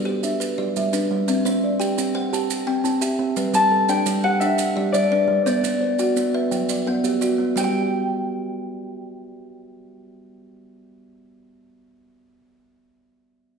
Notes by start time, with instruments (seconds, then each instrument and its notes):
Already playing: kalimba G3 D5
0.05 kalimba G4 C5
0.23 kalimba D4 E5, maracas
0.40 kalimba B4, maracas
0.58 kalimba G3 G4 D5
0.76 kalimba G3 E5, maracas
0.93 kalimba D4 B4, maracas
1.11 kalimba G3
1.28 kalimba C4 E5, maracas
1.45 kalimba C4 C5, maracas
1.64 kalimba D5
1.80 kalimba G4 G5, maracas
1.98 kalimba C4, maracas
2.15 kalimba C5 F#5
2.33 kalimba G4 A5, maracas
2.50 maracas
2.67 kalimba C4 G5
2.84 kalimba C4 A5, maracas
3.01 kalimba G4 E5, maracas
3.19 kalimba C4
3.37 kalimba G3 B4, maracas
3.54 kalimba G3 G4, harp A5, maracas
3.71 kalimba A4
3.89 kalimba D4 D5, harp G5, maracas
4.06 kalimba G3, maracas
4.24 kalimba G4 C5, harp F#5
4.40 kalimba D4 E5, harp E5, maracas
4.58 maracas
4.76 kalimba G3 G4 D5
4.92 kalimba G3 E5, harp D5, maracas
5.12 kalimba D4 B4
5.28 kalimba G3
5.46 kalimba B3 D5, harp D5, maracas
5.63 kalimba B3, maracas
5.81 kalimba C5
5.99 kalimba F#4 F#5, maracas
6.16 kalimba B3, maracas
6.34 kalimba B4 E5
6.51 kalimba F#3 G5, maracas
6.69 kalimba D5, maracas
6.87 kalimba B3 B4 F#5
7.04 kalimba B3 G4, maracas
7.21 kalimba F#4 D5, maracas
7.38 kalimba B3
7.56 kalimba G3, harp G5, maracas
7.60 kalimba G4
7.64 kalimba G5